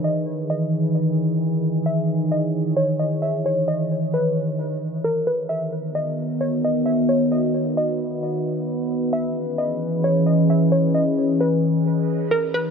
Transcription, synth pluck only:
\new Staff \with { instrumentName = "Synth pluck" } { \time 4/4 \key e \lydian \tempo 4 = 132 dis''4 dis''2. | e''4 dis''4 cis''8 dis''8 e''8 cis''8 | dis''4 b'2 ais'8 b'8 | e''4 dis''4 cis''8 dis''8 e''8 cis''8 |
dis''4 dis''2. | e''4 dis''4 cis''8 dis''8 e''8 cis''8 | dis''4 b'2 ais'8 b'8 | }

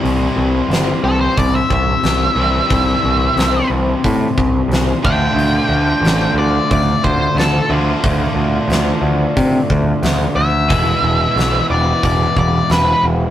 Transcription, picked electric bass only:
\new Staff \with { instrumentName = "Picked electric bass" } { \clef bass \time 4/4 \key d \dorian \tempo 4 = 90 c,8 c,8 g,,8 c,8 c,8 c,8 c,8 c,8 | c,8 c,8 c,8 c,8 a,8 c,8 c,8 d,8 | d,8 d,8 a,,8 d,8 d,8 d,8 d,8 d,8 | d,8 d,8 d,8 d,8 c8 d,8 d,8 d,8 |
e,,8 e,,8 b,,8 e,,8 e,,8 e,,8 e,,8 e,,8 | }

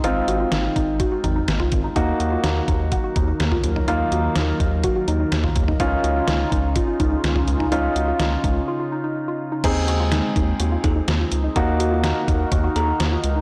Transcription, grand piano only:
\new Staff \with { instrumentName = "Grand piano" } { \time 4/4 \key ees \dorian \tempo 4 = 125 <c' ees' f'>1 | <bes ees' ges'>1 | <bes ees' f'>1 | <des' ees' f'>1 |
<des' ees' f'>1 | <c' ees' aes'>1 | <bes ees' ges'>1 | }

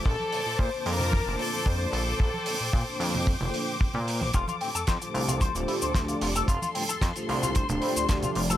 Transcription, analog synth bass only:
\new Staff \with { instrumentName = "Analog synth bass" } { \clef bass \time 4/4 \key f \major \tempo 4 = 112 bes,,16 r8 bes,16 bes,16 r16 f,8. f,,16 r16 f,16 f,8 bes,,8 | bes,,16 r8 bes,16 bes,16 r16 f,8. f,,16 r8. bes,8 bes,,16 | f,,16 r8 f,16 f,16 r16 c,8. d,,16 r16 d,16 d,8 f,,8 | f,,16 r8 f,16 f,16 r16 c,8. d,,16 r16 d,16 d,8 f,,8 | }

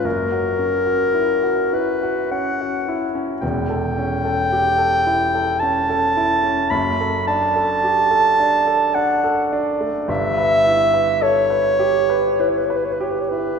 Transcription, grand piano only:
\new Staff \with { instrumentName = "Grand piano" } { \time 3/4 \key fis \phrygian \tempo 4 = 54 <fis,, fis,>16 fis'16 cis'16 fis'16 e'16 fis'16 e'16 fis'16 cis'16 fis'16 e'16 cis'16 | \key d \major <e,, e,>16 a'16 cis'16 a'16 g'16 a'16 e'16 a'16 cis'16 a'16 e'16 cis'16 | <fis,, fis,>16 a'16 d'16 a'16 g'16 a'16 d'16 a'16 d'16 a'16 d'16 a16 | <g,, g,>16 b'16 e'16 b'16 a'16 b'16 g'16 b'16 e'16 b'16 g'16 e'16 | }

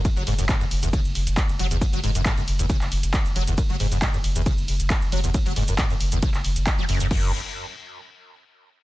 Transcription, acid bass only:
\new Staff \with { instrumentName = "Acid bass" } { \clef bass \time 4/4 \key fis \minor \tempo 4 = 136 fis,16 fis16 gis,16 fis,16 a,16 fis,16 r16 e,16 cis16 r4 r16 fis16 e,16 | fis,16 fis16 gis,16 fis,16 a,16 fis,16 r16 e,16 cis16 r4 r16 fis16 e,16 | fis,16 fis16 gis,16 fis,16 a,16 fis,16 r16 e,16 cis16 r4 r16 fis16 e,16 | fis,16 fis16 gis,16 fis,16 a,16 fis,16 r16 e,16 cis16 r4 fis16 fis,16 fis,16 |
fis,8 r2. r8 | }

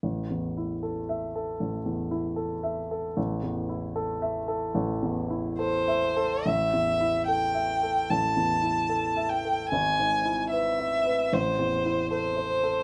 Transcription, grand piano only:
\new Staff \with { instrumentName = "Grand piano" } { \time 4/4 \key a \minor \tempo 4 = 75 \tuplet 3/2 { a,,8 e,8 e'8 a'8 e''8 a'8 a,,8 e,8 e'8 a'8 e''8 a'8 } | \tuplet 3/2 { a,,8 e,8 e'8 a'8 e''8 a'8 a,,8 e,8 e'8 a'8 e''8 a'8 } | \tuplet 3/2 { a,,8 e,8 e'8 a'8 e''8 a'8 a,,8 e,8 e'8 a'8 e''8 a'8 } | \tuplet 3/2 { gis,,8 gis,8 e'8 b'8 e''8 b'8 a,,8 e,8 e'8 a'8 c''8 a'8 } | }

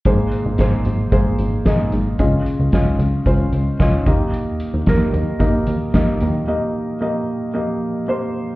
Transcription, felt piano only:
<<
  \new Staff \with { instrumentName = "Felt piano" } { \time 4/4 \key ees \mixolydian \tempo 4 = 112 <bes aes' c''>4 <bes aes' c''>4 <bes aes' c''>4 <bes aes' ees''>4 | <des' f' ees''>4 <des' f' ees''>4 <des' f' c''>4 <des' f' ees''>8 <bes g' ees''>8~ | <bes g' ees''>4 <bes g' bes'>4 <bes g' ees''>4 <bes g' ees''>4 | <bes g' ees''>4 <bes g' ees''>4 <bes g' ees''>4 <bes g' c''>4 | }
  \new Staff \with { instrumentName = "Felt piano" } { \clef bass \time 4/4 \key ees \mixolydian aes,4. r2 r8 | des4. r2 ees8~ | ees4 r2 r8 ees8~ | ees4 r2. | }
>>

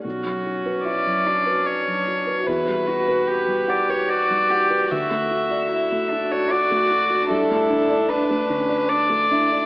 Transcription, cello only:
\new Staff \with { instrumentName = "Cello" } { \time 3/4 \key b \minor \tempo 4 = 74 fis'4 e'8 d'4. | e'8 fis'8 g'4 fis'8 g'8 | fis'4 e'8 d'8 fis'4 | e'4 d'8 cis'8 d'8 e'8 | }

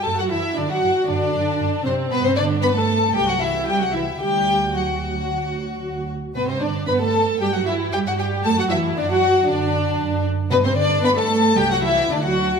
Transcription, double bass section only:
\new Staff \with { instrumentName = "Double bass section" } { \clef bass \time 4/4 \key d \mixolydian \tempo 4 = 115 fis,8 fis,8 fis,8 fis,8 fis,8 fis,8 fis,8 fis,8 | g,2 c,2 | d,2.~ d,8 r8 | g,4 g,4 g,4 g,4 |
fis,4 fis,4 fis,4 fis,4 | g,2 c,4 d,4 | }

